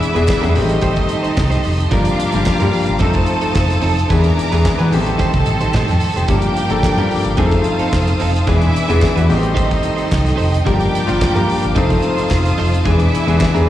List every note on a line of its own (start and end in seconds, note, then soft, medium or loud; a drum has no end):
0.00 0.15 E3 medium
0.00 0.15 G#3 medium
0.00 0.16 B3 medium
0.00 0.16 D4 medium
0.00 0.55 E4 medium
0.00 0.16 G#4 medium
0.00 0.55 G#4 medium
0.00 0.55 E5 medium
0.00 0.55 E5 loud
0.00 0.55 B5 medium
0.00 0.54 D6 medium
0.00 muted clean electric guitar stroke soft
0.00 closed hi-hat medium
0.14 0.25 E1 loud
0.14 0.36 E3 medium
0.14 0.36 G#3 medium
0.14 0.36 B3 medium
0.14 0.36 D4 medium
0.14 0.26 D4 medium
0.14 0.27 G#4 medium
0.14 0.37 G#4 loud
0.14 0.27 B4 medium
0.14 closed hi-hat soft
0.27 muted clean electric guitar stroke soft
0.27 kick loud
0.27 snare loud
0.27 clap loud
0.41 0.53 E2 medium
0.41 0.55 E3 medium
0.41 0.55 G#3 medium
0.41 0.55 B3 medium
0.41 0.54 D4 medium
0.41 0.56 D4 medium
0.41 0.54 G#4 medium
0.41 0.56 G#4 medium
0.41 0.55 B4 medium
0.41 closed hi-hat medium
0.55 0.95 A1 loud
0.55 1.43 D#3 medium
0.55 1.43 G3 medium
0.55 1.43 A3 medium
0.55 1.44 C4 medium
0.55 1.90 D#4 medium
0.55 1.91 G4 medium
0.55 1.44 G4 medium
0.55 1.91 D#5 medium
0.55 1.91 A5 medium
0.55 1.91 C6 medium
0.55 open hi-hat medium
0.69 muted clean electric guitar stroke soft
0.69 closed hi-hat medium
0.81 1.03 D#4 medium
0.81 0.97 G4 loud
0.81 0.95 C5 loud
0.81 kick loud
0.81 closed hi-hat medium
0.96 muted clean electric guitar stroke soft
0.96 kick medium
0.96 closed hi-hat soft
1.09 muted clean electric guitar stroke soft
1.09 closed hi-hat medium
1.23 1.35 D#4 medium
1.23 1.36 G4 medium
1.23 1.36 C5 medium
1.23 closed hi-hat soft
1.36 1.57 C2 loud
1.36 muted clean electric guitar stroke soft
1.36 kick loud
1.36 snare loud
1.36 clap medium
1.50 1.62 D#4 medium
1.50 1.63 G4 medium
1.50 1.64 C5 medium
1.50 snare soft
1.50 closed hi-hat medium
1.63 1.84 F1 medium
1.63 muted clean electric guitar stroke soft
1.63 open hi-hat medium
1.79 muted clean electric guitar stroke soft
1.79 closed hi-hat medium
1.91 2.11 G1 loud
1.91 2.24 F3 medium
1.91 2.24 G3 medium
1.91 2.25 A#3 medium
1.91 2.12 D4 medium
1.91 2.25 D4 medium
1.91 2.06 F4 medium
1.91 3.00 F4 loud
1.91 3.00 G4 medium
1.91 2.25 G4 medium
1.91 2.04 A#4 medium
1.91 4.08 F5 medium
1.91 3.00 F5 loud
1.91 3.00 A#5 medium
1.91 3.00 D6 medium
1.91 kick loud
1.91 closed hi-hat medium
2.05 muted clean electric guitar stroke medium
2.05 closed hi-hat medium
2.19 muted clean electric guitar stroke medium
2.19 closed hi-hat medium
2.32 2.43 G1 medium
2.32 2.55 F3 medium
2.32 2.55 G3 medium
2.32 2.55 A#3 medium
2.32 2.55 D4 medium
2.32 2.45 D4 medium
2.32 2.45 F4 medium
2.32 2.55 G4 loud
2.32 2.46 A#4 medium
2.32 closed hi-hat soft
2.46 muted clean electric guitar stroke soft
2.46 kick loud
2.46 snare loud
2.46 clap loud
2.60 2.71 G2 loud
2.60 3.00 F3 medium
2.60 3.01 G3 medium
2.60 3.02 A#3 medium
2.60 2.72 D4 medium
2.60 3.02 D4 medium
2.60 2.72 F4 medium
2.60 3.02 G4 medium
2.60 2.73 A#4 medium
2.60 closed hi-hat medium
2.73 muted clean electric guitar stroke soft
2.73 open hi-hat medium
2.86 2.98 G1 medium
2.86 muted clean electric guitar stroke medium
2.86 closed hi-hat soft
2.99 3.20 F1 loud
2.99 3.89 F3 medium
2.99 3.89 A3 medium
2.99 3.21 C4 medium
2.99 3.89 C4 medium
2.99 3.13 D#4 medium
2.99 3.90 D#4 medium
2.99 4.08 A4 medium
2.99 3.12 A4 loud
2.99 3.90 A4 loud
2.99 4.10 C5 medium
2.99 4.09 A5 medium
2.99 4.08 A5 medium
2.99 4.09 D#6 medium
2.99 kick loud
2.99 closed hi-hat medium
3.13 muted clean electric guitar stroke medium
3.13 kick medium
3.13 closed hi-hat soft
3.26 muted clean electric guitar stroke soft
3.26 closed hi-hat medium
3.41 3.53 C4 soft
3.41 3.54 D#4 medium
3.41 3.55 A4 medium
3.41 closed hi-hat soft
3.54 3.75 F1 loud
3.54 muted clean electric guitar stroke soft
3.54 kick loud
3.54 snare loud
3.54 clap medium
3.69 muted clean electric guitar stroke soft
3.69 snare soft
3.69 closed hi-hat medium
3.81 4.03 F1 medium
3.81 4.03 C4 medium
3.81 3.97 D#4 loud
3.81 3.96 A4 loud
3.81 open hi-hat medium
3.97 muted clean electric guitar stroke soft
3.97 closed hi-hat soft
4.09 4.30 E2 loud
4.09 4.43 E3 medium
4.09 4.43 G#3 medium
4.09 4.91 B3 medium
4.09 4.43 B3 medium
4.09 4.30 D4 medium
4.09 4.44 D4 medium
4.09 4.25 G#4 medium
4.09 4.44 G#4 medium
4.09 4.92 A#4 medium
4.09 4.24 B4 loud
4.09 4.92 E5 medium
4.09 4.92 G#5 medium
4.09 4.92 A#5 loud
4.09 4.91 D6 medium
4.09 kick loud
4.09 closed hi-hat medium
4.24 muted clean electric guitar stroke soft
4.24 closed hi-hat medium
4.37 muted clean electric guitar stroke medium
4.37 closed hi-hat medium
4.52 4.62 E2 medium
4.52 4.73 E3 medium
4.52 4.74 G#3 medium
4.52 4.73 B3 medium
4.52 4.74 D4 medium
4.52 4.63 D4 medium
4.52 4.63 G#4 medium
4.52 4.74 G#4 medium
4.52 4.64 B4 medium
4.52 closed hi-hat soft
4.64 muted clean electric guitar stroke soft
4.64 kick loud
4.64 snare loud
4.64 clap loud
4.78 4.93 E3 medium
4.78 4.89 E3 medium
4.78 4.93 G#3 medium
4.78 4.93 B3 medium
4.78 4.91 D4 medium
4.78 4.93 D4 medium
4.78 4.92 G#4 medium
4.78 4.93 B4 medium
4.78 closed hi-hat soft
4.92 5.22 A1 loud
4.92 5.80 D#3 medium
4.92 5.80 G3 medium
4.92 5.80 A3 medium
4.92 5.81 C4 medium
4.92 5.81 G4 medium
4.92 6.27 A4 medium
4.92 6.28 D#5 medium
4.92 7.36 G5 medium
4.92 6.27 A5 medium
4.92 6.27 C6 medium
4.92 open hi-hat medium
5.06 muted clean electric guitar stroke soft
5.06 closed hi-hat medium
5.18 5.40 D#4 medium
5.18 5.34 G4 loud
5.18 5.32 C5 loud
5.18 kick loud
5.18 closed hi-hat medium
5.33 5.43 C2 loud
5.33 muted clean electric guitar stroke medium
5.33 kick loud
5.33 closed hi-hat medium
5.46 5.57 A1 medium
5.46 muted clean electric guitar stroke soft
5.46 closed hi-hat medium
5.60 5.70 A1 medium
5.60 5.74 D#4 medium
5.60 5.75 G4 medium
5.60 5.76 C5 medium
5.60 closed hi-hat soft
5.74 5.85 A2 loud
5.74 5.95 D#4 medium
5.74 5.90 G4 loud
5.74 5.88 C5 loud
5.74 kick loud
5.74 snare loud
5.74 clap medium
5.88 5.98 F2 medium
5.88 muted clean electric guitar stroke soft
5.88 snare soft
5.88 closed hi-hat soft
6.00 muted clean electric guitar stroke soft
6.00 open hi-hat medium
6.16 6.25 F1 medium
6.16 6.29 D#4 medium
6.16 6.29 G4 medium
6.16 6.31 C5 medium
6.16 closed hi-hat soft
6.27 6.48 G1 loud
6.27 6.60 F3 medium
6.27 6.61 G3 medium
6.27 6.61 A#3 medium
6.27 6.61 D4 medium
6.27 6.50 D4 medium
6.27 6.43 F4 medium
6.27 6.61 G4 medium
6.27 7.36 G4 medium
6.27 7.37 A#4 medium
6.27 6.42 A#4 medium
6.27 8.45 F5 medium
6.27 7.37 G5 loud
6.27 7.37 D6 medium
6.27 kick loud
6.27 closed hi-hat medium
6.42 muted clean electric guitar stroke soft
6.42 closed hi-hat medium
6.56 muted clean electric guitar stroke soft
6.56 closed hi-hat medium
6.69 6.79 G1 medium
6.69 6.91 F3 medium
6.69 6.91 G3 medium
6.69 6.92 A#3 medium
6.69 6.92 D4 medium
6.69 6.82 D4 medium
6.69 6.83 F4 medium
6.69 6.92 A4 loud
6.69 6.84 A#4 medium
6.69 closed hi-hat soft
6.83 muted fingered electric bass stroke soft
6.83 kick loud
6.83 snare loud
6.83 clap loud
6.97 7.07 G2 loud
6.97 7.36 F3 medium
6.97 7.38 G3 medium
6.97 7.38 A#3 medium
6.97 7.39 D4 medium
6.97 7.10 D4 medium
6.97 7.10 F4 medium
6.97 7.39 G4 medium
6.97 7.11 A#4 loud
6.97 closed hi-hat soft
7.11 open hi-hat medium
7.24 7.35 G1 loud
7.24 muted clean electric guitar stroke soft
7.24 closed hi-hat medium
7.37 7.58 F1 medium
7.37 8.26 F3 medium
7.37 8.26 A3 medium
7.37 7.58 C4 medium
7.37 8.26 C4 medium
7.37 7.53 D#4 medium
7.37 8.27 D#4 medium
7.37 8.46 F4 medium
7.37 7.46 G#4 medium
7.37 7.51 A4 medium
7.37 8.48 C5 medium
7.37 8.46 F5 medium
7.37 8.47 A5 medium
7.37 8.47 D#6 medium
7.37 kick loud
7.37 closed hi-hat medium
7.46 8.30 A4 medium
7.51 muted clean electric guitar stroke medium
7.51 kick loud
7.51 closed hi-hat soft
7.64 muted clean electric guitar stroke soft
7.64 closed hi-hat medium
7.79 7.91 C4 soft
7.79 7.92 D#4 medium
7.79 7.93 A4 medium
7.79 closed hi-hat soft
7.93 8.13 F1 loud
7.93 kick loud
7.93 snare loud
7.93 clap medium
8.07 muted clean electric guitar stroke soft
8.07 closed hi-hat medium
8.20 8.40 F1 medium
8.20 8.41 C4 medium
8.20 8.33 D#4 loud
8.20 8.32 A4 loud
8.20 open hi-hat medium
8.34 muted clean electric guitar stroke soft
8.34 closed hi-hat soft
8.47 8.67 E1 loud
8.47 8.80 E3 medium
8.47 8.80 G#3 medium
8.47 8.80 B3 medium
8.47 8.68 D4 medium
8.47 8.81 D4 medium
8.47 9.28 E4 medium
8.47 8.61 G#4 loud
8.47 8.80 G#4 medium
8.47 9.29 B4 medium
8.47 8.60 B4 loud
8.47 9.28 E5 loud
8.47 9.29 E5 medium
8.47 9.29 G#5 medium
8.47 9.29 D6 medium
8.47 kick loud
8.47 closed hi-hat medium
8.61 muted clean electric guitar stroke soft
8.61 closed hi-hat medium
8.75 muted clean electric guitar stroke soft
8.75 closed hi-hat medium
8.89 8.99 E1 medium
8.89 9.10 E3 medium
8.89 9.11 G#3 medium
8.89 9.11 B3 medium
8.89 9.11 D4 medium
8.89 9.01 D4 medium
8.89 9.01 G#4 medium
8.89 9.11 G#4 medium
8.89 9.02 B4 medium
8.89 closed hi-hat soft
9.02 muted clean electric guitar stroke soft
9.02 kick loud
9.02 snare loud
9.02 clap medium
9.16 9.26 E2 loud
9.16 9.29 E3 medium
9.16 9.30 G#3 medium
9.16 9.29 B3 medium
9.16 9.30 D4 medium
9.16 9.27 D4 medium
9.16 9.30 F#4 loud
9.16 9.28 G#4 medium
9.16 9.29 B4 medium
9.16 closed hi-hat soft
9.28 9.69 A1 medium
9.28 10.17 D#3 medium
9.28 10.17 G3 medium
9.28 10.17 A3 medium
9.28 9.37 B3 medium
9.28 10.63 D#4 medium
9.28 10.18 G4 loud
9.28 10.65 A4 medium
9.28 10.63 D#5 medium
9.28 10.65 D#5 medium
9.28 11.74 G5 medium
9.28 10.66 C6 medium
9.28 muted clean electric guitar stroke medium
9.28 open hi-hat medium
9.37 10.21 C4 medium
9.42 muted clean electric guitar stroke soft
9.42 closed hi-hat soft
9.54 9.76 D#4 medium
9.54 9.69 G4 loud
9.54 9.67 C5 loud
9.54 kick loud
9.54 closed hi-hat medium
9.69 muted clean electric guitar stroke soft
9.69 kick medium
9.69 closed hi-hat soft
9.81 muted clean electric guitar stroke soft
9.81 closed hi-hat medium
9.96 10.08 D#4 soft
9.96 10.09 G4 medium
9.96 10.10 C5 medium
9.96 closed hi-hat soft
10.10 10.31 C2 loud
10.10 muted clean electric guitar stroke soft
10.10 kick medium
10.10 snare loud
10.10 clap medium
10.25 muted clean electric guitar stroke medium
10.25 snare soft
10.25 closed hi-hat soft
10.36 10.59 F1 loud
10.36 10.58 D#4 medium
10.36 10.52 G4 medium
10.36 10.50 C5 medium
10.36 open hi-hat medium
10.52 muted clean electric guitar stroke soft
10.52 closed hi-hat medium
10.65 10.86 G1 loud
10.65 10.98 F3 medium
10.65 10.98 G3 medium
10.65 10.98 A#3 medium
10.65 10.87 D4 medium
10.65 10.98 D4 medium
10.65 10.81 F4 medium
10.65 10.99 G4 medium
10.65 11.74 G4 medium
10.65 10.79 A#4 loud
10.65 11.76 A#4 medium
10.65 12.84 F5 medium
10.65 11.74 G5 loud
10.65 11.75 D6 medium
10.65 kick loud
10.65 closed hi-hat medium
10.80 muted clean electric guitar stroke soft
10.80 closed hi-hat medium
10.94 muted clean electric guitar stroke soft
10.94 closed hi-hat medium
11.06 11.18 G1 medium
11.06 11.28 F3 medium
11.06 11.29 G3 medium
11.06 11.29 A#3 medium
11.06 11.29 D4 medium
11.06 11.20 D4 soft
11.06 11.21 F4 medium
11.06 11.29 F4 loud
11.06 11.21 A#4 medium
11.06 closed hi-hat soft
11.21 muted clean electric guitar stroke soft
11.21 muted fingered electric bass stroke medium
11.21 kick loud
11.21 snare loud
11.21 clap loud
11.35 11.45 G2 loud
11.35 11.75 F3 medium
11.35 11.76 G3 medium
11.35 11.76 A#3 medium
11.35 11.76 D4 medium
11.35 11.47 D4 medium
11.35 11.48 F4 medium
11.35 11.76 G4 medium
11.35 11.48 A#4 loud
11.35 closed hi-hat soft
11.48 muted clean electric guitar stroke soft
11.48 open hi-hat medium
11.62 11.73 G1 loud
11.62 muted clean electric guitar stroke soft
11.62 closed hi-hat soft
11.75 11.96 F1 loud
11.75 12.64 F3 medium
11.75 12.64 A3 medium
11.75 12.64 C4 medium
11.75 11.96 D#4 medium
11.75 12.65 D#4 medium
11.75 12.84 F4 medium
11.75 11.90 A4 medium
11.75 12.64 A4 loud
11.75 11.89 C5 loud
11.75 12.85 C5 medium
11.75 12.84 F5 medium
11.75 12.85 A5 medium
11.75 12.85 D#6 medium
11.75 kick loud
11.75 closed hi-hat medium
11.90 muted clean electric guitar stroke medium
11.90 kick medium
11.90 closed hi-hat medium
12.02 muted clean electric guitar stroke medium
12.02 closed hi-hat medium
12.17 12.30 D#4 medium
12.17 12.31 A4 medium
12.17 12.31 C5 medium
12.17 closed hi-hat soft
12.30 12.51 F1 loud
12.30 kick loud
12.30 snare loud
12.30 clap medium
12.45 muted clean electric guitar stroke soft
12.45 snare soft
12.45 closed hi-hat medium
12.58 12.78 F1 medium
12.58 12.79 D#4 loud
12.58 12.72 A4 medium
12.58 12.71 C5 loud
12.58 open hi-hat medium
12.72 muted clean electric guitar stroke soft
12.72 closed hi-hat medium
12.85 13.05 E1 loud
12.85 13.18 E3 medium
12.85 13.18 G#3 medium
12.85 13.18 B3 medium
12.85 13.06 D4 medium
12.85 13.18 D4 medium
12.85 13.66 E4 medium
12.85 13.01 G#4 medium
12.85 13.19 G#4 medium
12.85 13.66 B4 medium
12.85 13.00 B4 medium
12.85 13.66 E5 medium
12.85 13.67 E5 medium
12.85 13.67 G#5 medium
12.85 13.67 D6 medium
12.85 kick loud
12.85 closed hi-hat medium
13.00 muted clean electric guitar stroke soft
13.00 closed hi-hat medium
13.13 muted clean electric guitar stroke soft
13.13 closed hi-hat medium
13.27 13.36 E1 loud
13.27 13.48 E3 loud
13.27 13.48 G#3 medium
13.27 13.48 B3 medium
13.27 13.49 D4 medium
13.27 13.39 D4 medium
13.27 13.49 G#4 loud
13.27 13.40 G#4 medium
13.27 13.40 B4 medium
13.27 closed hi-hat soft
13.40 kick loud
13.40 snare loud
13.40 clap loud
13.54 13.64 E2 loud
13.54 13.67 E3 medium
13.54 13.67 G#3 medium
13.54 13.68 B3 medium
13.54 13.68 D4 medium
13.54 13.67 D4 medium
13.54 13.68 G#4 medium
13.54 13.69 B4 loud
13.54 closed hi-hat soft